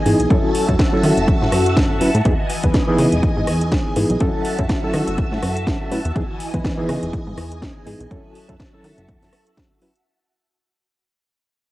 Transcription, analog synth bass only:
0.06 0.15 G#2 medium
0.20 0.26 B1 medium
0.30 0.39 F#2 loud
0.69 0.75 F#2 loud
1.04 1.12 D#3 loud
1.17 1.31 F#1 medium
1.42 1.48 A2 loud
1.52 2.03 F#2 medium
2.01 2.10 F#1 medium
2.15 2.21 A2 medium
2.26 2.34 E2 loud
2.64 2.70 E2 loud
2.99 3.07 C#3 loud
3.13 3.23 E1 medium
3.23 3.34 G#2 soft
3.37 3.43 G#2 loud
3.47 3.77 E2 medium
3.96 4.05 G#2 medium
4.10 4.17 B1 medium
4.21 4.29 F#2 loud
4.59 4.65 F#2 loud
4.94 5.03 D#3 loud
5.08 5.22 F#1 medium
5.32 5.39 A2 loud
5.43 5.73 F#2 medium
5.91 6.00 A2 medium
6.05 6.12 E2 medium
6.16 6.24 E2 loud
6.54 6.61 E2 loud
6.89 6.98 C#3 loud
7.03 7.13 E1 medium
7.27 7.34 G#2 loud
7.37 7.67 E2 medium
7.87 7.95 G#2 medium
8.00 8.07 B1 medium
8.11 8.20 F#2 loud
8.49 8.56 F#2 loud
8.84 8.93 D#3 loud
8.98 9.08 F#1 medium
9.09 9.17 E2 loud
9.22 9.29 F#2 medium

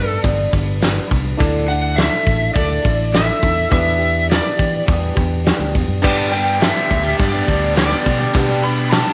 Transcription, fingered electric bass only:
0.00 0.18 G2 medium
0.24 0.46 G1 loud
0.53 0.98 G1 medium
1.12 1.34 C2 medium
1.41 2.08 D2 loud
2.27 2.49 A1 medium
2.55 2.78 D2 loud
2.85 3.30 A1 loud
3.43 3.65 E2 medium
3.72 4.39 E2 loud
4.59 4.81 E3 medium
4.88 5.10 E2 loud
5.17 5.50 E2 medium
5.59 5.72 D2 medium
5.75 5.87 E2 medium
5.88 6.01 F#2 medium
6.04 6.71 G2 loud
6.90 7.13 D2 medium
7.20 7.42 G2 loud
7.48 7.93 D2 loud
8.06 8.28 B2 medium
8.35 9.02 B2 loud

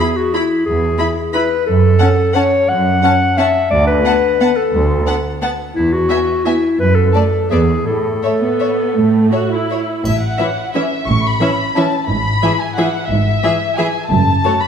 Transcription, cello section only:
0.67 0.94 E2 soft
1.67 1.94 F#2 medium
2.71 2.98 F#2 medium
3.71 3.99 D2 medium
4.73 5.01 D2 medium
5.75 6.03 E2 medium
6.79 7.08 F#2 soft
7.51 7.81 E2 soft
7.86 8.17 A2 soft
8.96 9.26 A2 soft
10.05 10.32 A2 medium
11.08 11.34 A2 medium
12.09 12.36 G#2 soft
13.11 13.37 G#2 medium
14.11 14.38 F#2 medium

